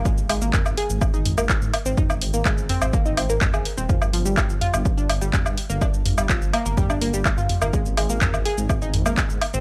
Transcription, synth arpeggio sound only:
\new Staff \with { instrumentName = "Synth arpeggio sound" } { \time 4/4 \key aes \lydian \tempo 4 = 125 <aes aes'>16 r16 <aes aes'>16 <bes bes'>16 <bes' bes''>16 r16 <aes' aes''>16 r8 <ees' ees''>16 r16 <bes bes'>16 r8. <c' c''>16 | <ees' ees''>16 r8 <bes bes'>16 <aes aes'>16 r16 <c' c''>16 <c' c''>16 <bes bes'>16 <ees' ees''>16 <c' c''>16 <bes bes'>16 r16 <aes' aes''>16 r16 <c' c''>16 | <f f'>16 r16 <f f'>16 <g g'>16 <g' g''>16 r16 <f' f''>16 r8 <d' d''>16 r16 <g g'>16 r8. <bes bes'>16 | <d' d''>16 r8 <g g'>16 <f f'>16 r16 <bes bes'>16 <bes bes'>16 <g g'>16 <d' d''>16 <bes bes'>16 <g g'>16 r16 <f' f''>16 r16 <bes bes'>16 |
<aes aes'>16 r16 <aes aes'>16 <bes bes'>16 <bes' bes''>16 r16 <aes' aes''>16 r8 <ees' ees''>16 r16 <bes bes'>16 r8. <c' c''>16 | }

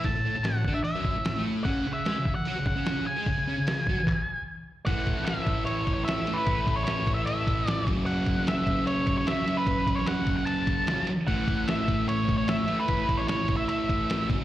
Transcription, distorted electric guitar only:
\new Staff \with { instrumentName = "Distorted electric guitar" } { \clef bass \time 4/4 \key a \major \tempo 4 = 149 a,16 a,16 <a, a>16 a,16 a,8 <d d'>16 r8 <fis, fis>8 a,8 <a, a>8. | <cis cis'>8 cis8 <gis gis'>16 cis8 r16 <fis fis'>16 cis16 cis16 <cis cis'>8. cis16 <gis gis'>16 | cis16 cis16 <cis cis'>16 cis16 cis8 <fis fis'>16 r2 r16 | <a, e a>2.~ <a, e a>8 <a, e a>8 |
<a, e a>2.~ <a, e a>8 <fis, cis fis>8~ | <fis, cis fis>2. <fis, cis fis>8 <fis, cis fis>8~ | <fis, cis fis>2. <fis, cis fis>8 r8 | <a, e a>2.~ <a, e a>8 <a, e a>8 |
<a, e a>2.~ <a, e a>8 <fis, cis fis>8 | }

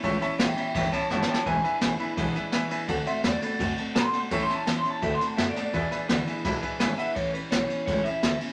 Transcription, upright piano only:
\new Staff \with { instrumentName = "Upright piano" } { \time 4/4 \key e \dorian \tempo 4 = 168 <cis'' e'' a''>8 <cis'' e'' a''>8 <e'' a''>8 <cis'' e'' a''>8 <cis'' e'' a''>8 <cis'' e'' b''>8 <cis'' e'' fis''>8 <cis'' e'' g''>8 | <b' e'' gis''>8 <b' e'' gis''>8 <b' e'' gis''>8 <b' e'' b''>8 <b' e'' gis''>8 <b' e'' gis''>8 <b' e'' gis''>8 <b' e'' gis''>8 | <d'' fis'' a''>8 <d'' fis'' c'''>8 <d'' fis'' b''>8 <d'' fis'' b''>8 <d'' fis'' a''>8 <d'' fis'' a''>8 <d'' fis'' b''>8 <d'' fis'' a''>8 | <cis'' e'' a''>8 <cis'' e'' a''>8 <cis'' e'' a''>8 <cis'' e'' a''>8 <d'' fis'' a''>8 <d'' fis'' b''>8 <d'' fis'' a''>8 <d'' fis'' a''>8 |
<b' e'' gis''>8 <b' e'' gis''>8 <b' e'' fis''>8 <b' e'' gis''>8 <b' e'' b''>8 <b' e'' gis''>8 <b' e'' gis''>8 <b' e'' fis''>8 | r1 | }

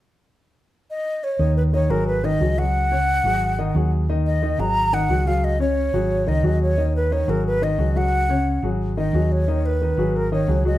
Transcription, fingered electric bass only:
\new Staff \with { instrumentName = "Fingered electric bass" } { \clef bass \time 4/4 \key aes \dorian \tempo 4 = 178 r1 | ees,4. aes,,4. des,4~ | des,4. aes,,4. ees,4~ | ees,4. aes,,4. des,4~ |
des,4. aes,,4 des,8 ees,4~ | ees,4. aes,,4. des,4~ | des,4. aes,,4. ees,4~ | ees,4. aes,,4. des,4 | }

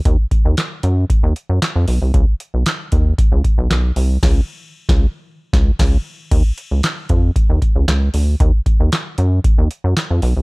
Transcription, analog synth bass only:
\new Staff \with { instrumentName = "Analog synth bass" } { \clef bass \time 4/4 \key ees \dorian \tempo 4 = 115 ees,16 r8 ees,16 r8 ges,8 r16 ees,16 r16 ges,16 r16 f,16 ces,16 c,16 | des,16 r8 ces,16 r8 ees,8 r16 des,16 r16 ces,16 ces,8 c,8 | des,8 r8. des,8 r8. des,8 des,8 r8 | ees,16 r8 des,16 r8 f,8 r16 ees,16 r16 des,16 des,8 d,8 |
ees,16 r8 ees,16 r8 ges,8 r16 ees,16 r16 ges,16 r16 f,16 ces,16 c,16 | }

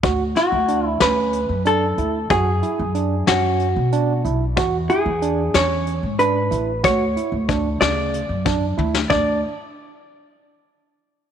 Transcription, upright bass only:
\new Staff \with { instrumentName = "Upright bass" } { \clef bass \time 7/8 \key d \lydian \tempo 4 = 93 d,8 r16 d,8. d,8. fis,8. d,8 | fis,8 r16 fis,8. fis,8. b,8. b,,8 | e,8 r16 e,8. e,8. gis,8. a,,8 | d,8 r16 d,8. d,8. fis,8. d,8 |
d,8 r2. | }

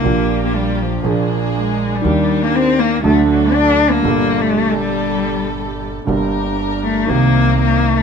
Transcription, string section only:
\new Staff \with { instrumentName = "String section" } { \time 4/4 \key g \minor \tempo 4 = 119 <bes f' g'>2 <bes d' aes'>2 | <d' g'>2 <d' fis' a'>2 | <g g' a'>1 | <d' g' bes'>2 <c' ees' bes'>2 | }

